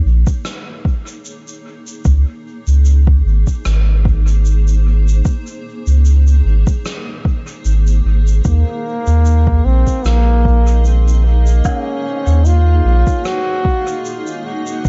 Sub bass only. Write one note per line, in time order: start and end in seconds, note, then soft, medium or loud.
0.05 0.25 A#1 medium
2.05 2.24 C#2 medium
2.67 3.22 C#2 loud
3.25 3.45 G#1 loud
3.66 5.22 G#1 medium
5.87 6.42 C#2 loud
6.45 6.64 G#1 medium
7.65 8.01 G#1 medium
8.05 8.41 G#1 medium
8.45 8.64 D#2 medium
9.07 9.62 D#2 loud
9.65 9.85 A#1 medium
10.05 11.61 A#1 medium
12.27 12.81 D#2 loud
12.85 13.04 A#1 medium
14.85 14.89 C#2 medium